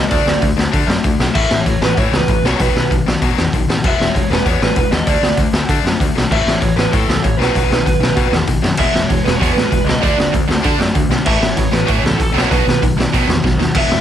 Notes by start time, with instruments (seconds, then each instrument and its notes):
Already playing: distorted electric guitar G#3
0.10 picked electric bass D2, distorted electric guitar D3 A3 D4, lead electric guitar D5, kick, open hi-hat
0.26 picked electric bass D2, distorted electric guitar D3 A3, snare
0.41 picked electric bass D2, distorted electric guitar D3 A3, kick, open hi-hat
0.57 picked electric bass D2, distorted electric guitar D3 A3, snare
0.72 distorted electric guitar D3 A3 D4, picked electric bass D3, kick, open hi-hat
0.87 picked electric bass F#2, distorted electric guitar D3 A3, snare
1.04 picked electric bass D2, distorted electric guitar D3 A3, kick, open hi-hat
1.19 picked electric bass B1, distorted electric guitar D3 A3, snare
1.35 picked electric bass A1, distorted electric guitar A2 E3 A3, lead electric guitar E5, kick, crash
1.51 picked electric bass A1, distorted electric guitar A2 E3, snare
1.60 lead electric guitar C#5
1.66 picked electric bass A1, distorted electric guitar A2 E3, kick, open hi-hat
1.81 picked electric bass A1, distorted electric guitar A2 E3, lead electric guitar B4, snare
1.97 picked electric bass A2, distorted electric guitar A2 E3 A3, lead electric guitar C#5, kick, open hi-hat
2.12 picked electric bass C#2, distorted electric guitar A2 E3, lead electric guitar B4, snare
2.28 picked electric bass A1, distorted electric guitar A2 E3, lead electric guitar B4, kick, open hi-hat
2.42 picked electric bass B1, distorted electric guitar B2 D#3 F#3, snare
2.46 lead electric guitar C#5
2.59 picked electric bass B1, distorted electric guitar B2 D#3 F#3, lead electric guitar B4, kick, open hi-hat
2.75 picked electric bass B1, distorted electric guitar B2 D#3, snare
2.91 picked electric bass B1, distorted electric guitar B2 D#3, kick, open hi-hat
3.07 picked electric bass B1, distorted electric guitar B2 D#3, snare
3.21 picked electric bass B2, distorted electric guitar B2 D#3 F#3, kick, open hi-hat
3.38 picked electric bass E2, distorted electric guitar B2 D#3, snare
3.53 picked electric bass B1, distorted electric guitar B2 D#3, kick, open hi-hat
3.69 picked electric bass A1, distorted electric guitar B2 D#3, snare
3.84 picked electric bass E1, distorted electric guitar E3 G#3 B3, lead electric guitar E5, kick, crash
4.00 picked electric bass E1, distorted electric guitar E3 G#3, snare
4.10 lead electric guitar C#5
4.15 picked electric bass E1, distorted electric guitar E3 G#3, kick, open hi-hat
4.30 picked electric bass E1, distorted electric guitar E3 G#3, lead electric guitar B4, snare
4.45 picked electric bass E2, distorted electric guitar E3 G#3 B3, lead electric guitar C#5, kick, open hi-hat
4.61 picked electric bass A1, distorted electric guitar E3 G#3, lead electric guitar B4, snare
4.76 picked electric bass E1, distorted electric guitar E3 G#3, lead electric guitar B4, kick, open hi-hat
4.91 picked electric bass D#2, distorted electric guitar E3 G#3, lead electric guitar D#5, snare
5.07 picked electric bass D2, distorted electric guitar D3 A3 D4, lead electric guitar D5, kick, open hi-hat
5.21 picked electric bass D2, distorted electric guitar D3 A3, snare
5.37 picked electric bass D2, distorted electric guitar D3 A3, kick, open hi-hat
5.53 picked electric bass D2, distorted electric guitar D3 A3, snare
5.69 picked electric bass D3, distorted electric guitar D3 A3 D4, kick, open hi-hat
5.84 picked electric bass F#2, distorted electric guitar D3 A3, snare
6.00 picked electric bass D2, distorted electric guitar D3 A3, kick, open hi-hat
6.15 picked electric bass B1, distorted electric guitar D3 A3, snare
6.30 picked electric bass A1, distorted electric guitar A2 E3 A3, lead electric guitar E5, kick, crash
6.46 picked electric bass A1, distorted electric guitar A2 E3, snare
6.54 lead electric guitar C#5
6.61 picked electric bass A1, distorted electric guitar A2 E3, kick, open hi-hat
6.76 picked electric bass A1, distorted electric guitar A2 E3, lead electric guitar B4, snare
6.91 distorted electric guitar A2 E3 A3, picked electric bass A2, lead electric guitar A4, kick, open hi-hat
7.08 picked electric bass C#2, distorted electric guitar A2 E3, snare
7.22 picked electric bass A1, distorted electric guitar A2 E3, lead electric guitar C#5, kick, open hi-hat
7.39 picked electric bass B1, distorted electric guitar B2 D#3 F#3, lead electric guitar B4, snare
7.55 picked electric bass B1, distorted electric guitar B2 D#3 F#3, kick, open hi-hat
7.70 picked electric bass B1, distorted electric guitar B2 D#3, snare
7.86 picked electric bass B1, distorted electric guitar B2 D#3, kick, open hi-hat
7.99 picked electric bass B1, distorted electric guitar B2 D#3, snare
8.16 distorted electric guitar B2 D#3 F#3, picked electric bass B2, kick, open hi-hat
8.32 picked electric bass E2, distorted electric guitar B2 D#3, snare
8.47 picked electric bass B1, distorted electric guitar B2 D#3, kick, open hi-hat
8.62 picked electric bass F#2, distorted electric guitar B2 D#3, snare
8.77 picked electric bass E1, overdriven electric guitar E2 B2, distorted electric guitar E3 G#3 B3, lead electric guitar E5, kick, crash
8.93 picked electric bass E1, overdriven electric guitar E2 B2, distorted electric guitar E3 G#3, snare
9.02 lead electric guitar C#5
9.09 picked electric bass E1, overdriven electric guitar E2 B2, distorted electric guitar E3 G#3, kick, open hi-hat
9.24 picked electric bass E1, overdriven electric guitar E2 B2, distorted electric guitar E3 G#3, lead electric guitar B4, snare
9.36 overdriven electric guitar E2, lead electric guitar C#5
9.40 picked electric bass E2, overdriven electric guitar B2, distorted electric guitar E3 G#3 B3, kick, open hi-hat
9.53 picked electric bass A1, overdriven electric guitar E2 B2, distorted electric guitar E3 G#3, lead electric guitar B4
9.58 snare
9.66 lead electric guitar B4
9.71 picked electric bass E1, overdriven electric guitar E2 B2, distorted electric guitar E3 G#3, kick, open hi-hat
9.84 picked electric bass C#2, overdriven electric guitar E2 B2, distorted electric guitar E3 G#3, lead electric guitar D#5
9.89 snare
10.02 picked electric bass D2, distorted electric guitar D3 A3 D4, lead electric guitar D5, kick, open hi-hat
10.17 picked electric bass D2, distorted electric guitar D3 A3, snare
10.33 picked electric bass D2, distorted electric guitar D3 A3, kick, open hi-hat
10.48 picked electric bass D2, distorted electric guitar D3 A3, snare
10.62 distorted electric guitar D3 A3 D4, picked electric bass D3, kick, open hi-hat
10.78 picked electric bass F#2, distorted electric guitar D3 A3, snare
10.94 picked electric bass D2, distorted electric guitar D3 A3, kick, open hi-hat
11.09 picked electric bass B1, distorted electric guitar D3 A3, snare
11.26 picked electric bass A1, distorted electric guitar A2 E3 A3, lead electric guitar E5, kick, crash
11.41 picked electric bass A1, distorted electric guitar A2 E3, snare
11.50 lead electric guitar C#5
11.55 picked electric bass A1, distorted electric guitar A2 E3, kick, open hi-hat
11.71 picked electric bass A1, distorted electric guitar A2 E3, lead electric guitar B4, snare
11.85 distorted electric guitar A2 E3 A3, picked electric bass A2, kick, open hi-hat
11.90 lead electric guitar C#5
12.02 picked electric bass C#2, distorted electric guitar A2 E3, lead electric guitar A4, snare
12.18 picked electric bass A1, distorted electric guitar A2 E3, kick, open hi-hat
12.23 lead electric guitar A4
12.32 picked electric bass B1, distorted electric guitar B2 D#3 F#3, overdriven electric guitar B3
12.37 lead electric guitar C#5, snare
12.49 picked electric bass B1, distorted electric guitar B2 D#3 F#3, overdriven electric guitar B3, lead electric guitar B4, kick, open hi-hat
12.66 picked electric bass B1, distorted electric guitar B2 D#3, overdriven electric guitar F#3, snare
12.82 picked electric bass B1, distorted electric guitar B2 D#3, overdriven electric guitar F#3, kick, open hi-hat
12.96 picked electric bass B1, distorted electric guitar B2 D#3, overdriven electric guitar F#3, snare
13.13 distorted electric guitar B2 D#3 F#3, picked electric bass B2, overdriven electric guitar B3, kick, open hi-hat
13.27 picked electric bass E2, distorted electric guitar B2 D#3, overdriven electric guitar F#3, snare
13.44 picked electric bass B1, distorted electric guitar B2 D#3, overdriven electric guitar F#3, kick, snare
13.57 picked electric bass D#2, distorted electric guitar B2 D#3, overdriven electric guitar F#3, snare
13.75 picked electric bass E1, overdriven electric guitar E2 B2, distorted electric guitar E3 G#3 B3, lead electric guitar E5, kick, crash
13.88 picked electric bass E1, overdriven electric guitar E2 B2, distorted electric guitar E3 G#3, snare